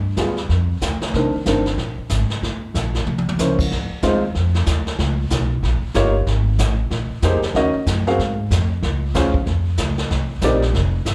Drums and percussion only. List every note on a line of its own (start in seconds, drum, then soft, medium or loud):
0.17 kick soft
0.17 snare soft
0.17 hi-hat pedal medium
0.37 snare soft
0.49 brush sweep soft
0.49 kick soft
0.49 snare soft
0.81 kick soft
0.81 snare medium
0.81 hi-hat pedal soft
1.01 snare soft
1.14 brush sweep soft
1.14 kick soft
1.14 snare soft
1.46 kick soft
1.46 snare soft
1.46 hi-hat pedal medium
1.66 snare soft
1.78 brush sweep soft
1.78 kick soft
1.78 snare soft
2.10 kick soft
2.10 snare soft
2.10 hi-hat pedal medium
2.30 snare soft
2.42 brush sweep soft
2.42 kick soft
2.42 snare soft
2.75 kick soft
2.75 snare soft
2.75 hi-hat pedal medium
2.95 snare soft
3.06 mid tom soft
3.18 mid tom soft
3.29 mid tom medium
3.39 snare soft
3.39 hi-hat pedal medium
3.59 kick medium
3.59 crash medium
3.71 brush sweep medium
3.71 kick soft
3.71 snare soft
4.03 kick soft
4.03 snare medium
4.03 hi-hat pedal medium
4.35 brush sweep soft
4.35 kick soft
4.35 snare soft
4.55 snare soft
4.66 kick soft
4.66 snare medium
4.66 hi-hat pedal medium
4.87 snare soft
4.99 brush sweep medium
4.99 kick soft
4.99 snare soft
5.30 kick soft
5.30 snare medium
5.30 hi-hat pedal medium
5.63 brush sweep soft
5.63 kick soft
5.63 snare soft
5.94 kick soft
5.94 snare medium
5.94 hi-hat pedal medium
6.27 brush sweep soft
6.27 kick soft
6.27 snare soft
6.59 kick soft
6.59 snare medium
6.59 hi-hat pedal medium
6.91 brush sweep soft
6.91 kick soft
6.91 snare soft
7.22 kick soft
7.22 snare medium
7.22 hi-hat pedal medium
7.42 snare soft
7.54 brush sweep soft
7.54 kick soft
7.54 snare soft
7.86 kick soft
7.86 snare medium
7.86 hi-hat pedal medium
8.07 snare soft
8.19 brush sweep soft
8.19 kick soft
8.19 snare soft
8.51 kick soft
8.51 snare medium
8.51 hi-hat pedal medium
8.83 brush sweep medium
8.83 kick soft
8.83 snare soft
9.15 kick soft
9.15 snare medium
9.15 hi-hat pedal medium
9.34 kick medium
9.46 brush sweep soft
9.46 kick soft
9.46 snare soft
9.77 kick soft
9.77 snare medium
9.77 hi-hat pedal medium
9.98 snare soft
10.10 brush sweep medium
10.10 kick soft
10.10 snare soft
10.41 kick soft
10.41 snare medium
10.41 hi-hat pedal medium
10.62 snare soft
10.74 brush sweep soft
10.74 kick soft
10.74 snare soft
11.06 kick soft
11.06 snare medium
11.06 hi-hat pedal medium